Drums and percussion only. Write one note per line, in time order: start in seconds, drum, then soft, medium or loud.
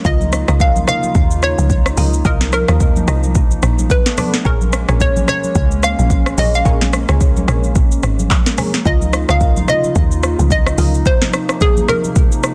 0.05 kick loud
0.05 shaker medium
0.21 high conga medium
0.21 shaker soft
0.33 cross-stick loud
0.33 shaker loud
0.48 cross-stick loud
0.48 shaker medium
0.60 kick loud
0.60 low conga medium
0.60 shaker medium
0.76 high conga medium
0.76 shaker medium
0.87 cross-stick medium
0.87 low conga medium
0.87 shaker medium
1.03 high conga soft
1.03 shaker medium
1.15 kick loud
1.15 low conga medium
1.15 shaker medium
1.31 shaker medium
1.43 cross-stick medium
1.43 shaker medium
1.59 high conga medium
1.59 shaker medium
1.70 kick medium
1.70 shaker medium
1.86 cross-stick loud
1.86 shaker medium
1.97 open hi-hat medium
1.97 high conga medium
1.97 low conga medium
1.97 shaker medium
2.14 shaker medium
2.25 kick loud
2.25 shaker medium
2.41 snare medium
2.41 high conga medium
2.41 shaker soft
2.53 cross-stick loud
2.53 shaker loud
2.68 cross-stick loud
2.68 shaker medium
2.80 kick loud
2.80 low conga medium
2.80 shaker medium
2.96 high conga medium
2.96 shaker medium
3.08 cross-stick loud
3.08 low conga medium
3.08 shaker medium
3.23 high conga soft
3.23 shaker medium
3.35 kick loud
3.35 low conga medium
3.35 shaker medium
3.51 shaker medium
3.63 cross-stick loud
3.63 shaker medium
3.79 high conga medium
3.79 shaker medium
3.90 kick medium
3.90 shaker medium
4.06 snare medium
4.06 shaker soft
4.18 cross-stick loud
4.18 open hi-hat medium
4.18 high conga medium
4.18 low conga medium
4.18 shaker loud
4.34 snare medium
4.34 shaker medium
4.45 kick loud
4.45 shaker medium
4.61 high conga medium
4.61 shaker soft
4.73 cross-stick loud
4.73 shaker loud
4.89 cross-stick loud
4.89 shaker medium
5.00 kick loud
5.00 low conga medium
5.00 shaker medium
5.16 high conga medium
5.16 shaker medium
5.28 cross-stick loud
5.28 low conga medium
5.28 shaker medium
5.44 high conga soft
5.44 shaker medium
5.55 kick loud
5.55 low conga medium
5.55 shaker medium
5.71 shaker medium
5.83 cross-stick loud
5.83 shaker medium
5.99 high conga medium
5.99 shaker medium
6.10 kick medium
6.10 shaker medium
6.26 cross-stick loud
6.26 shaker soft
6.38 open hi-hat medium
6.38 high conga medium
6.38 low conga medium
6.38 shaker loud
6.54 shaker medium
6.65 kick loud
6.65 shaker medium
6.81 snare medium
6.81 high conga medium
6.81 shaker medium
6.93 cross-stick loud
6.93 shaker loud
7.09 cross-stick loud
7.09 shaker medium
7.21 kick loud
7.21 low conga medium
7.21 shaker medium
7.37 high conga medium
7.37 shaker medium
7.48 cross-stick loud
7.48 low conga medium
7.48 shaker medium
7.64 high conga soft
7.64 shaker medium
7.75 kick loud
7.75 low conga medium
7.75 shaker medium
7.91 shaker medium
8.03 cross-stick loud
8.03 shaker medium
8.19 high conga medium
8.19 shaker medium
8.30 kick loud
8.30 clap medium
8.30 shaker medium
8.46 snare medium
8.46 shaker soft
8.58 cross-stick loud
8.58 open hi-hat medium
8.58 high conga medium
8.58 low conga medium
8.58 shaker loud
8.74 snare medium
8.74 shaker medium
8.85 kick loud
8.85 shaker medium
9.01 high conga medium
9.01 shaker medium
9.13 cross-stick loud
9.13 shaker loud
9.29 cross-stick loud
9.29 shaker medium
9.41 kick loud
9.41 low conga medium
9.41 shaker medium
9.57 high conga medium
9.57 shaker medium
9.68 cross-stick loud
9.68 low conga medium
9.68 shaker medium
9.84 high conga soft
9.84 shaker medium
9.96 kick loud
9.96 low conga medium
9.96 shaker medium
10.12 shaker medium
10.23 cross-stick loud
10.23 shaker medium
10.39 high conga medium
10.39 shaker medium
10.50 kick medium
10.50 shaker medium
10.66 cross-stick loud
10.66 shaker medium
10.78 open hi-hat medium
10.78 high conga medium
10.78 low conga medium
10.78 shaker medium
10.94 shaker medium
11.06 kick loud
11.06 shaker medium
11.21 snare medium
11.21 high conga medium
11.21 shaker soft
11.33 cross-stick loud
11.33 shaker loud
11.49 cross-stick loud
11.49 shaker medium
11.61 kick loud
11.61 low conga medium
11.61 shaker medium
11.77 high conga medium
11.77 shaker medium
11.88 cross-stick loud
11.88 low conga medium
11.88 shaker medium
12.04 high conga soft
12.04 shaker medium
12.16 kick loud
12.16 low conga medium
12.16 shaker medium
12.32 shaker medium
12.43 cross-stick loud
12.43 shaker medium